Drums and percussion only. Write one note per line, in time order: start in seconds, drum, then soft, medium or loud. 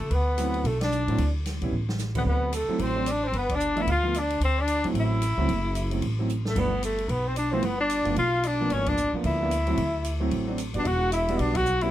0.11 ride soft
0.38 hi-hat pedal soft
0.38 ride medium
0.54 ride soft
0.65 ride soft
0.81 snare medium
0.81 ride medium
0.92 hi-hat pedal soft
1.08 ride soft
1.18 ride medium
1.46 snare soft
1.46 hi-hat pedal soft
1.46 ride medium
1.62 kick soft
1.62 ride soft
1.89 snare medium
1.99 snare soft
1.99 hi-hat pedal soft
2.15 kick medium
2.15 crash medium
2.53 hi-hat pedal medium
2.53 ride medium
2.79 ride soft
3.06 hi-hat pedal medium
3.06 ride medium
3.33 ride soft
3.49 kick medium
3.49 ride medium
3.60 hi-hat pedal medium
3.77 ride soft
3.87 ride medium
4.14 hi-hat pedal medium
4.14 ride medium
4.30 ride soft
4.41 ride medium
4.68 hi-hat pedal soft
4.68 ride medium
4.84 ride soft
4.95 ride medium
5.22 hi-hat pedal medium
5.22 ride medium
5.49 ride medium
5.75 hi-hat pedal soft
5.75 ride medium
5.91 ride soft
6.02 ride medium
6.29 hi-hat pedal soft
6.45 snare medium
6.56 kick medium
6.56 crash medium
6.83 hi-hat pedal medium
6.83 ride medium
6.98 ride soft
7.09 ride medium
7.36 hi-hat pedal medium
7.36 ride medium
7.63 ride medium
7.90 hi-hat pedal medium
7.90 ride medium
8.05 ride soft
8.16 ride medium
8.43 hi-hat pedal medium
8.43 ride medium
8.70 ride medium
8.86 kick medium
8.86 ride medium
8.97 hi-hat pedal medium
9.24 ride medium
9.51 hi-hat pedal medium
9.51 ride medium
9.67 ride soft
9.77 ride medium
10.04 hi-hat pedal soft
10.04 ride medium
10.31 ride medium
10.58 hi-hat pedal medium
10.58 ride medium
10.74 ride soft
10.85 ride medium
11.12 hi-hat pedal medium
11.12 ride medium
11.28 ride soft
11.39 ride soft
11.55 kick medium
11.55 ride medium
11.66 hi-hat pedal soft
11.81 ride soft